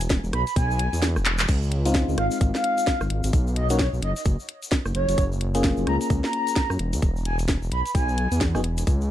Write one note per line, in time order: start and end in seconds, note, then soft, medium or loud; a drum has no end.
0.00 0.20 E1 loud
0.00 closed hi-hat medium
0.10 kick loud
0.10 snare loud
0.10 closed hi-hat medium
0.10 shaker medium
0.24 0.32 E1 medium
0.24 shaker soft
0.33 0.45 B1 medium
0.33 0.42 B5 medium
0.33 cross-stick medium
0.33 closed hi-hat loud
0.47 0.53 B5 medium
0.47 closed hi-hat soft
0.47 shaker medium
0.56 0.89 B1 medium
0.56 1.02 G#5 medium
0.56 kick loud
0.56 closed hi-hat medium
0.56 shaker medium
0.71 shaker soft
0.79 closed hi-hat loud
0.93 1.18 E2 loud
0.93 closed hi-hat soft
0.93 shaker medium
1.02 snare loud
1.02 closed hi-hat medium
1.02 shaker medium
1.16 1.46 E1 loud
1.16 cross-stick medium
1.16 shaker soft
1.26 clap medium
1.26 closed hi-hat loud
1.38 clap loud
1.38 closed hi-hat medium
1.38 shaker medium
1.48 2.05 C#2 loud
1.48 kick loud
1.48 closed hi-hat medium
1.48 crash medium
1.48 shaker medium
1.63 shaker soft
1.72 closed hi-hat loud
1.85 3.32 G#3 medium
1.85 3.32 C4 medium
1.85 3.32 D#4 medium
1.85 3.32 F4 loud
1.85 closed hi-hat medium
1.85 shaker medium
1.95 kick loud
1.95 snare loud
1.95 closed hi-hat medium
1.95 shaker medium
2.09 2.16 C#2 loud
2.09 shaker soft
2.18 2.29 G#1 medium
2.18 2.27 F5 medium
2.18 cross-stick medium
2.18 closed hi-hat loud
2.31 2.38 F5 medium
2.31 closed hi-hat soft
2.31 shaker medium
2.41 2.52 G#1 loud
2.41 kick loud
2.41 closed hi-hat medium
2.41 shaker medium
2.55 3.01 F5 loud
2.55 snare medium
2.55 shaker soft
2.64 closed hi-hat loud
2.78 closed hi-hat soft
2.78 shaker medium
2.87 kick loud
2.87 snare loud
2.87 closed hi-hat medium
2.87 shaker medium
3.01 3.08 G#1 medium
3.01 cross-stick medium
3.01 shaker soft
3.10 3.21 G#1 medium
3.10 closed hi-hat loud
3.24 3.32 G#1 loud
3.24 closed hi-hat medium
3.24 shaker medium
3.33 3.89 B1 loud
3.33 kick loud
3.33 closed hi-hat medium
3.33 shaker medium
3.47 shaker soft
3.56 3.67 D#5 medium
3.56 closed hi-hat loud
3.70 3.79 A#3 medium
3.70 3.79 C#4 medium
3.70 3.79 D#4 medium
3.70 3.79 F#4 loud
3.70 3.76 C#5 medium
3.70 closed hi-hat medium
3.70 shaker medium
3.79 3.88 C#5 medium
3.79 kick loud
3.79 snare loud
3.79 closed hi-hat medium
3.79 shaker medium
3.93 4.01 B1 loud
3.93 shaker soft
4.02 4.14 F#1 medium
4.02 4.11 D#5 medium
4.02 closed hi-hat loud
4.16 4.22 D#5 medium
4.16 closed hi-hat soft
4.16 shaker medium
4.25 4.37 F#1 loud
4.25 kick loud
4.25 closed hi-hat medium
4.25 shaker medium
4.39 shaker soft
4.49 closed hi-hat loud
4.63 closed hi-hat soft
4.63 shaker medium
4.72 kick loud
4.72 snare loud
4.72 closed hi-hat medium
4.72 shaker medium
4.86 4.93 F#1 medium
4.86 cross-stick medium
4.86 shaker soft
4.95 5.06 F#1 medium
4.95 5.23 C#5 loud
4.95 closed hi-hat loud
5.09 5.16 F#1 loud
5.09 closed hi-hat medium
5.09 shaker medium
5.18 5.74 F#1 loud
5.18 kick loud
5.18 closed hi-hat medium
5.18 shaker medium
5.32 shaker soft
5.41 closed hi-hat loud
5.55 6.78 A#3 medium
5.55 6.78 C#4 medium
5.55 6.78 F4 medium
5.55 6.78 G#4 loud
5.55 closed hi-hat medium
5.55 shaker medium
5.64 kick loud
5.64 snare loud
5.64 closed hi-hat medium
5.64 shaker medium
5.77 5.85 F#1 medium
5.77 shaker soft
5.87 5.98 C#2 loud
5.87 5.96 A#5 medium
5.87 cross-stick medium
5.87 closed hi-hat loud
6.01 6.07 A#5 medium
6.01 closed hi-hat soft
6.01 shaker medium
6.10 6.22 C#2 loud
6.10 kick loud
6.10 closed hi-hat medium
6.10 shaker medium
6.24 6.70 A#5 medium
6.24 snare medium
6.24 shaker soft
6.33 closed hi-hat loud
6.47 closed hi-hat soft
6.47 shaker medium
6.56 kick loud
6.56 snare loud
6.56 closed hi-hat medium
6.56 shaker medium
6.70 6.78 F#2 medium
6.70 cross-stick medium
6.70 shaker soft
6.79 6.95 E1 medium
6.79 closed hi-hat loud
6.93 7.01 E2 loud
6.93 closed hi-hat medium
6.93 shaker medium
7.02 7.58 E1 loud
7.02 kick loud
7.02 closed hi-hat medium
7.02 shaker medium
7.16 shaker soft
7.25 7.37 G#5 loud
7.25 closed hi-hat loud
7.39 closed hi-hat medium
7.39 shaker medium
7.48 kick loud
7.48 snare loud
7.48 closed hi-hat medium
7.48 shaker medium
7.62 7.70 E1 loud
7.62 shaker soft
7.72 7.83 B1 loud
7.72 7.81 B5 medium
7.72 closed hi-hat loud
7.86 7.92 B5 medium
7.86 closed hi-hat soft
7.86 shaker medium
7.95 8.28 B1 medium
7.95 8.41 G#5 medium
7.95 kick loud
7.95 closed hi-hat medium
7.95 shaker medium
8.09 shaker soft
8.18 closed hi-hat loud
8.32 8.56 E2 medium
8.32 closed hi-hat soft
8.32 shaker medium
8.41 kick loud
8.41 snare loud
8.41 closed hi-hat medium
8.41 shaker medium
8.55 8.84 E1 loud
8.55 8.60 B3 medium
8.55 8.60 D#4 medium
8.55 8.60 F#4 medium
8.55 8.60 G#4 medium
8.55 cross-stick medium
8.55 shaker soft
8.64 closed hi-hat loud
8.78 closed hi-hat medium
8.78 shaker medium
8.87 9.11 C#2 loud
8.87 kick loud
8.87 closed hi-hat medium
8.87 shaker medium
9.01 shaker soft